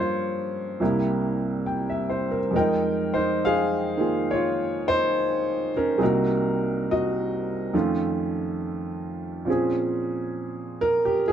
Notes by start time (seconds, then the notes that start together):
Already playing: G2 F3 A#3 C#4 F4 G4 C5 C#5
0.80 C2 C3 A#3 E4 G4
1.66 G5
1.89 E5
2.10 C5
2.31 A#4
2.51 F2 G#3
2.55 D#4 A#4 G5
2.59 D#4
3.14 D#4 C5
3.45 G#4 F5
3.97 D#3 A#3 F4 G#4
4.31 F4 C#5
4.88 D#4 C5
5.76 C#4 A#4
5.98 C2 C3 A#3 G#4
6.02 D#4 F#4 A#4
6.91 F#4 D#5
7.74 F2 D#3 A3 C#4 F4
9.45 A#2 F3 C4 C#4
9.50 G#4
10.81 A#4
11.05 G4
11.28 G#4